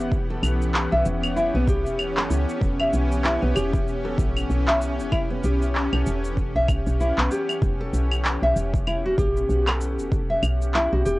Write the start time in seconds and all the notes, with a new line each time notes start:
Already playing: E3 B3 C#4 G4 F#5
0.00 E1
0.12 kick, cabasa
0.30 A4
0.43 B1, cabasa, claves
0.62 cabasa
0.74 clap, cabasa
0.92 B1 E5
1.06 E1, cabasa
1.24 cabasa, claves
1.36 E4, cabasa
1.55 B1 B3
1.68 G4, kick, cabasa
1.86 E1, cabasa
1.99 cabasa, claves
2.17 A4, clap
2.30 C#2, cabasa
2.49 cabasa
2.61 E1, kick, cabasa
2.80 E5, claves
2.93 B1, cabasa
3.12 cabasa
3.24 E4, clap, cabasa
3.42 B1 B3
3.55 E1 G4, cabasa, claves
3.74 kick, cabasa
3.88 cabasa
4.05 A4
4.18 A1, kick, cabasa
4.37 cabasa, claves
4.50 B1, cabasa
4.68 E5, clap
4.82 cabasa
4.99 E1, cabasa
5.12 E4, kick, cabasa, claves
5.30 B3
5.44 B1 G4, cabasa
5.62 cabasa
5.75 clap, cabasa
5.93 B1 A4, claves
6.06 E1, cabasa
6.24 cabasa
6.37 kick, cabasa
6.55 B1 E5
6.68 kick, cabasa, claves
6.86 B1, cabasa
7.00 E4, cabasa
7.18 B1 B3, clap
7.31 G4, cabasa
7.49 cabasa, claves
7.62 E1, kick, cabasa
7.81 A4
7.93 B1, cabasa
8.12 cabasa, claves
8.25 clap, cabasa
8.42 B1 E5
8.56 E1, cabasa
8.74 kick, cabasa
8.87 E4, cabasa, claves
9.06 F#4
9.18 A1 G4, kick, cabasa
9.37 cabasa
9.49 B1, cabasa
9.68 A4, clap, claves
9.81 cabasa
9.98 E1, cabasa
10.12 kick, cabasa
10.30 E5
10.43 B1, cabasa, claves
10.62 cabasa
10.74 E4, clap, cabasa
10.93 B1 F#4
11.05 E1 G4, cabasa